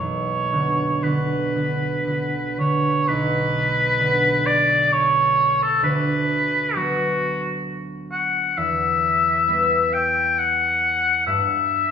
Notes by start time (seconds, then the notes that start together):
Already playing: F#4 C#5
0.00 B1
0.52 D3 B3 F#4
1.03 D3 B3 F#4 B4
1.56 D3 B3 F#4
2.05 D3 B3
2.10 F#4
2.59 D3 B3 F#4 C#5
3.08 B1 B4
3.99 D3 B3 F#4
4.46 D5
4.92 C#5
5.63 A4
5.83 D2 B4
6.75 F#3 B3 F#4
8.12 F#5
8.57 E2 E5
9.47 G3 B3 B4
9.94 G5
10.39 F#5
11.26 G2 E5